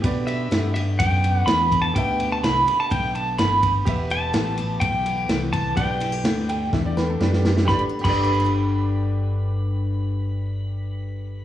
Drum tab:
CC |----------------|----------------|----------------|----------------|
RD |x-x-x-x-x-x-x-x-|x-x-x-x-x-x-x-x-|x-x-x-x-x-x-x-x-|x-x-x-x---------|
SD |----o-------o---|----o-------o---|----o-------o---|----o---o-o-oooo|
BD |o-------o-----o-|o-------o-----o-|o-------o-----o-|o-------o-------|

CC |---x------------|----------------|
RD |----------------|----------------|
SD |o---------------|----------------|
BD |o--o------------|----------------|